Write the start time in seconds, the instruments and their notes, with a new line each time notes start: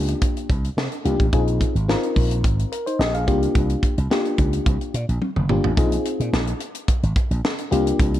Already playing: slap bass C#2, fm electric piano A#3 D4 F4 G4
0.08 closed hi-hat
0.21 kick, closed hi-hat
0.37 closed hi-hat
0.49 slap bass C2, kick, closed hi-hat
0.64 closed hi-hat
0.77 slap bass C3, snare
0.92 closed hi-hat
1.05 slap bass C2, fm electric piano A#3 D4 F4 G4, closed hi-hat
1.20 slap bass A1, kick, closed hi-hat
1.33 slap bass A#1, fm electric piano C4 D#4 F4 G#4, kick, closed hi-hat
1.48 closed hi-hat
1.61 kick, closed hi-hat
1.75 slap bass G#1, closed hi-hat
1.88 fm electric piano C4 D#4 F4 A#4, snare
2.03 closed hi-hat
2.16 slap bass A#1, kick, open hi-hat
2.31 closed hi-hat
2.44 slap bass G#1, kick, closed hi-hat
2.59 closed hi-hat
2.72 fm electric piano A#4, closed hi-hat
2.86 fm electric piano D#4 C5, closed hi-hat
2.99 slap bass A#1, fm electric piano G4 D#5, snare
3.14 fm electric piano G#4 F5, closed hi-hat
3.27 slap bass C2, fm electric piano A#3 D4 F4 G4, kick, closed hi-hat
3.43 closed hi-hat
3.55 slap bass C2, kick, closed hi-hat
3.69 closed hi-hat
3.83 kick, closed hi-hat
3.98 slap bass C2, closed hi-hat
4.10 fm electric piano A#3 D4 F4 G4, snare
4.25 closed hi-hat
4.38 slap bass C#2, kick, closed hi-hat
4.53 closed hi-hat
4.66 slap bass C2, kick, closed hi-hat
4.81 closed hi-hat
4.94 slap bass A#2, closed hi-hat
5.09 slap bass A#1, closed hi-hat
5.22 high tom
5.36 slap bass F1, mid tom
5.49 slap bass G1, fm electric piano A#3 D4 F4 G4, mid tom
5.64 slap bass A1, floor tom
5.77 slap bass A#1, fm electric piano C4 D#4 F4 G#4, kick, closed hi-hat
5.92 closed hi-hat
6.05 closed hi-hat
6.20 slap bass A#2, closed hi-hat
6.33 slap bass A#1, snare
6.47 closed hi-hat
6.60 closed hi-hat
6.75 closed hi-hat
6.88 kick, closed hi-hat
7.03 slap bass G#1, closed hi-hat
7.16 kick, closed hi-hat
7.31 slap bass A#1, closed hi-hat
7.45 snare
7.58 closed hi-hat
7.71 slap bass C2, fm electric piano A#3 D4 F4 G4, closed hi-hat
7.87 closed hi-hat
7.99 slap bass C2, kick, closed hi-hat
8.14 closed hi-hat